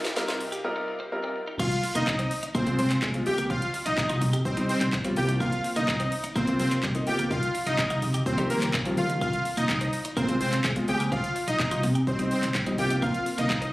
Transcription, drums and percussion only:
0.05 snare loud
0.05 closed hi-hat medium
0.05 shaker medium
0.16 snare loud
0.16 closed hi-hat medium
0.16 shaker medium
0.28 snare loud
0.28 closed hi-hat medium
0.28 shaker medium
0.40 open hi-hat medium
0.40 shaker medium
0.52 closed hi-hat soft
0.52 shaker medium
1.60 kick loud
1.60 crash loud
1.60 shaker medium
1.72 closed hi-hat medium
1.72 shaker medium
1.84 open hi-hat medium
1.84 shaker medium
1.95 closed hi-hat medium
1.95 shaker medium
2.07 kick loud
2.07 clap loud
2.07 shaker medium
2.19 closed hi-hat medium
2.19 shaker medium
2.31 open hi-hat medium
2.31 shaker medium
2.43 closed hi-hat medium
2.43 shaker medium
2.55 kick loud
2.55 shaker medium
2.67 closed hi-hat medium
2.67 shaker medium
2.79 open hi-hat medium
2.79 shaker medium
2.90 clap medium
2.90 closed hi-hat medium
2.90 shaker medium
3.02 kick loud
3.02 clap loud
3.02 shaker medium
3.14 closed hi-hat medium
3.14 shaker medium
3.26 open hi-hat medium
3.26 shaker medium
3.38 closed hi-hat medium
3.38 shaker medium
3.50 kick loud
3.50 shaker medium
3.62 closed hi-hat medium
3.62 shaker medium
3.74 open hi-hat medium
3.74 shaker medium
3.86 closed hi-hat medium
3.86 shaker medium
3.98 kick loud
3.98 clap loud
3.98 shaker medium
4.09 closed hi-hat medium
4.09 shaker medium
4.21 open hi-hat medium
4.21 shaker medium
4.33 closed hi-hat medium
4.33 shaker medium
4.45 kick loud
4.45 shaker medium
4.57 closed hi-hat medium
4.57 shaker medium
4.69 open hi-hat medium
4.69 shaker medium
4.81 clap medium
4.81 closed hi-hat medium
4.81 shaker medium
4.93 kick loud
4.93 clap loud
4.93 shaker medium
5.04 closed hi-hat medium
5.04 shaker medium
5.16 open hi-hat medium
5.16 shaker soft
5.29 closed hi-hat medium
5.29 shaker medium
5.40 kick loud
5.40 shaker medium
5.52 closed hi-hat medium
5.52 shaker medium
5.64 open hi-hat medium
5.64 shaker medium
5.76 closed hi-hat medium
5.76 shaker medium
5.88 kick loud
5.88 clap loud
5.88 shaker medium
6.00 closed hi-hat medium
6.00 shaker medium
6.12 open hi-hat medium
6.12 shaker medium
6.24 closed hi-hat medium
6.24 shaker medium
6.36 kick loud
6.36 shaker medium
6.47 closed hi-hat medium
6.47 shaker medium
6.59 open hi-hat medium
6.59 shaker medium
6.71 clap medium
6.71 closed hi-hat medium
6.71 shaker medium
6.83 kick loud
6.83 clap loud
6.83 shaker medium
6.95 closed hi-hat medium
6.95 shaker medium
7.07 open hi-hat medium
7.07 shaker soft
7.19 closed hi-hat medium
7.19 shaker medium
7.31 kick loud
7.31 shaker medium
7.43 closed hi-hat medium
7.43 shaker medium
7.55 open hi-hat medium
7.55 shaker medium
7.67 closed hi-hat medium
7.67 shaker medium
7.78 kick loud
7.78 clap loud
7.78 shaker medium
7.90 closed hi-hat medium
7.90 shaker medium
8.02 open hi-hat medium
8.02 shaker medium
8.14 closed hi-hat medium
8.14 shaker medium
8.26 kick loud
8.26 shaker medium
8.38 closed hi-hat medium
8.38 shaker medium
8.50 open hi-hat medium
8.50 shaker medium
8.62 clap medium
8.62 closed hi-hat medium
8.62 shaker medium
8.74 kick loud
8.74 clap loud
8.74 shaker medium
8.85 closed hi-hat medium
8.85 shaker medium
8.97 open hi-hat medium
8.97 shaker soft
9.10 closed hi-hat medium
9.10 shaker medium
9.21 kick loud
9.21 shaker medium
9.33 closed hi-hat medium
9.33 shaker medium
9.45 open hi-hat medium
9.45 shaker medium
9.57 closed hi-hat medium
9.57 shaker medium
9.69 kick loud
9.69 clap loud
9.69 shaker medium
9.81 closed hi-hat medium
9.81 shaker medium
9.93 open hi-hat medium
9.93 shaker medium
10.05 closed hi-hat medium
10.05 shaker medium
10.17 kick loud
10.17 shaker medium
10.29 closed hi-hat medium
10.29 shaker medium
10.41 open hi-hat medium
10.41 shaker medium
10.52 clap medium
10.52 closed hi-hat medium
10.52 shaker medium
10.64 kick loud
10.64 clap loud
10.64 shaker medium
10.76 closed hi-hat medium
10.76 shaker medium
10.88 open hi-hat medium
10.88 shaker soft
11.00 closed hi-hat medium
11.00 shaker medium
11.12 kick loud
11.12 shaker medium
11.24 closed hi-hat medium
11.24 shaker medium
11.36 open hi-hat medium
11.36 shaker medium
11.48 closed hi-hat medium
11.48 shaker medium
11.59 kick loud
11.59 clap loud
11.59 shaker medium
11.71 closed hi-hat medium
11.71 shaker medium
11.83 open hi-hat medium
11.83 shaker medium
11.95 closed hi-hat medium
11.95 shaker medium
12.07 kick loud
12.07 shaker medium
12.19 closed hi-hat medium
12.19 shaker medium
12.31 open hi-hat medium
12.31 shaker medium
12.43 clap medium
12.43 closed hi-hat medium
12.43 shaker medium
12.55 kick loud
12.55 clap loud
12.55 shaker medium
12.66 closed hi-hat medium
12.66 shaker medium
12.78 open hi-hat medium
12.78 shaker soft
12.90 closed hi-hat medium
12.90 shaker medium
13.02 kick loud
13.02 shaker medium
13.14 closed hi-hat medium
13.14 shaker medium
13.26 open hi-hat medium
13.26 shaker medium
13.38 closed hi-hat medium
13.38 shaker medium
13.50 kick loud
13.50 clap loud
13.50 shaker medium
13.62 closed hi-hat medium
13.62 shaker medium

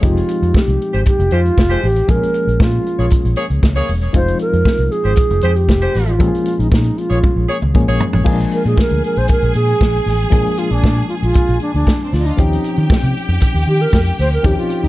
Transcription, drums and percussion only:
0.03 kick loud
0.03 closed hi-hat medium
0.17 closed hi-hat medium
0.29 closed hi-hat medium
0.43 closed hi-hat soft
0.54 kick loud
0.54 snare loud
0.67 closed hi-hat soft
0.82 closed hi-hat medium
0.94 closed hi-hat soft
1.06 kick loud
1.06 closed hi-hat medium
1.20 closed hi-hat soft
1.31 closed hi-hat medium
1.46 closed hi-hat soft
1.58 kick loud
1.58 snare loud
1.71 closed hi-hat medium
1.83 open hi-hat medium
1.96 closed hi-hat soft
2.08 kick loud
2.08 closed hi-hat medium
2.23 closed hi-hat medium
2.34 closed hi-hat medium
2.49 closed hi-hat soft
2.60 kick loud
2.60 snare loud
2.72 closed hi-hat soft
2.86 closed hi-hat soft
2.99 closed hi-hat soft
3.10 kick loud
3.10 closed hi-hat medium
3.25 closed hi-hat soft
3.36 closed hi-hat medium
3.50 closed hi-hat soft
3.63 kick loud
3.63 snare loud
3.76 closed hi-hat soft
3.89 open hi-hat medium
4.02 closed hi-hat soft
4.14 kick loud
4.14 closed hi-hat medium
4.28 closed hi-hat medium
4.39 closed hi-hat medium
4.53 closed hi-hat soft
4.65 kick loud
4.65 snare loud
4.77 closed hi-hat soft
4.92 closed hi-hat soft
5.05 closed hi-hat soft
5.16 kick loud
5.16 closed hi-hat medium
5.30 closed hi-hat soft
5.41 closed hi-hat medium
5.56 closed hi-hat soft
5.69 kick loud
5.69 snare loud
5.81 closed hi-hat medium
5.94 snare soft
5.94 open hi-hat medium
6.07 closed hi-hat soft
6.20 kick loud
6.20 closed hi-hat medium
6.35 closed hi-hat medium
6.46 closed hi-hat medium
6.60 closed hi-hat soft
6.72 kick loud
6.72 snare loud
6.84 closed hi-hat soft
6.98 closed hi-hat medium
7.12 closed hi-hat soft
7.23 kick loud
7.23 high tom medium
7.62 mid tom medium
7.75 kick medium
8.00 floor tom loud
8.13 floor tom medium
8.26 kick loud
8.26 crash medium
8.40 closed hi-hat medium
8.51 closed hi-hat medium
8.65 closed hi-hat soft
8.78 kick loud
8.78 snare loud
8.89 closed hi-hat soft
9.04 closed hi-hat soft
9.16 closed hi-hat soft
9.28 kick loud
9.28 closed hi-hat medium
9.42 closed hi-hat soft
9.54 closed hi-hat medium
9.69 closed hi-hat soft
9.81 kick loud
9.81 snare loud
9.94 closed hi-hat medium
10.07 snare soft
10.07 open hi-hat medium
10.20 closed hi-hat soft
10.32 kick loud
10.32 closed hi-hat medium
10.46 closed hi-hat soft
10.57 closed hi-hat medium
10.72 closed hi-hat soft
10.84 kick loud
10.84 snare loud
10.96 closed hi-hat soft
11.10 closed hi-hat soft
11.23 closed hi-hat soft
11.34 kick loud
11.34 closed hi-hat medium
11.48 closed hi-hat soft
11.60 closed hi-hat soft
11.75 closed hi-hat soft
11.87 kick loud
11.87 snare loud
12.00 closed hi-hat soft
12.13 snare soft
12.13 open hi-hat medium
12.26 closed hi-hat medium
12.38 kick loud
12.38 closed hi-hat medium
12.53 closed hi-hat medium
12.64 closed hi-hat medium
12.78 closed hi-hat soft
12.90 kick loud
12.90 snare loud
13.02 closed hi-hat soft
13.17 closed hi-hat medium
13.29 closed hi-hat soft
13.40 kick loud
13.40 closed hi-hat medium
13.55 closed hi-hat soft
13.66 closed hi-hat medium
13.81 closed hi-hat soft
13.93 kick loud
13.93 snare loud
14.06 closed hi-hat soft
14.19 snare soft
14.19 open hi-hat medium
14.32 closed hi-hat soft
14.44 kick loud
14.44 closed hi-hat medium
14.59 closed hi-hat medium
14.70 closed hi-hat medium
14.84 closed hi-hat soft

